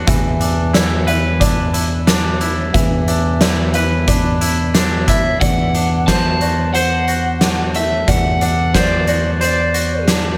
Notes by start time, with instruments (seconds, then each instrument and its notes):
Already playing: clean electric guitar D4
0.07 fingered electric bass E2, clean electric guitar E3, felt piano E5, kick, closed hi-hat
0.40 clean electric guitar D4, closed hi-hat
0.73 clean electric guitar E4, felt piano D5, snare, closed hi-hat
1.07 clean electric guitar B4, felt piano E5, closed hi-hat
1.40 clean electric guitar D4, felt piano D5, kick, closed hi-hat
1.74 clean electric guitar E4, closed hi-hat
2.07 clean electric guitar D4, snare, closed hi-hat
2.41 clean electric guitar E4, closed hi-hat
2.74 fingered electric bass E2, clean electric guitar E3, felt piano E5, kick, closed hi-hat
3.08 clean electric guitar D4, closed hi-hat
3.41 clean electric guitar E4, felt piano D5, snare, closed hi-hat
3.74 clean electric guitar B4, felt piano E5, closed hi-hat
4.08 clean electric guitar D4, felt piano D5, kick, closed hi-hat
4.41 clean electric guitar E4, closed hi-hat
4.74 clean electric guitar D4, snare, closed hi-hat
5.08 clean electric guitar E4, overdriven electric guitar E5, kick, closed hi-hat
5.40 fingered electric bass E2, clean electric guitar E3, felt piano D5, overdriven electric guitar F#5, kick, closed hi-hat
5.75 clean electric guitar D4, closed hi-hat
6.07 felt piano C5, clean electric guitar C5, overdriven electric guitar A5, kick, snare, closed hi-hat
6.41 clean electric guitar F#4, felt piano D5, closed hi-hat
6.74 felt piano C5, clean electric guitar C5, overdriven electric guitar F#5, closed hi-hat
7.08 clean electric guitar F#4, closed hi-hat
7.41 clean electric guitar D4, snare, closed hi-hat
7.74 clean electric guitar A3, overdriven electric guitar E5, closed hi-hat
8.07 fingered electric bass E2, clean electric guitar E3, felt piano D5, overdriven electric guitar F#5, kick, closed hi-hat
8.41 clean electric guitar D4, overdriven electric guitar F#5, closed hi-hat
8.74 felt piano C5, clean electric guitar C5, overdriven electric guitar D5, kick, snare, closed hi-hat
9.07 clean electric guitar F#4, felt piano D5, closed hi-hat
9.40 felt piano C5, clean electric guitar C5, overdriven electric guitar D5, closed hi-hat
9.74 clean electric guitar F#4, closed hi-hat
10.08 clean electric guitar D4, snare, closed hi-hat